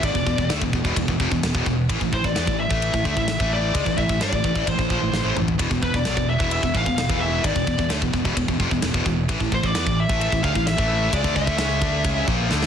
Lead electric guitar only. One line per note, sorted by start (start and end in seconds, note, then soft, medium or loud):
0.04 0.47 D5 medium
2.14 2.25 C5 medium
2.25 2.59 D5 loud
2.60 3.18 E5 loud
3.19 3.50 E5 medium
3.53 3.96 D5 loud
3.98 4.21 E5 medium
4.22 4.65 D5 loud
4.68 5.33 C5 medium
5.83 5.95 B4 medium
5.96 6.29 D5 medium
6.29 6.51 E5 medium
6.52 6.73 E5 medium
6.77 7.19 F5 loud
7.20 7.45 E5 loud
7.45 7.88 D5 medium
9.54 9.66 C5 medium
9.66 9.99 D5 loud
10.00 10.19 E5 loud
10.21 10.42 E5 medium
10.44 10.67 F5 loud
10.67 11.15 E5 loud
11.14 11.35 D5 loud
11.35 12.24 E5 medium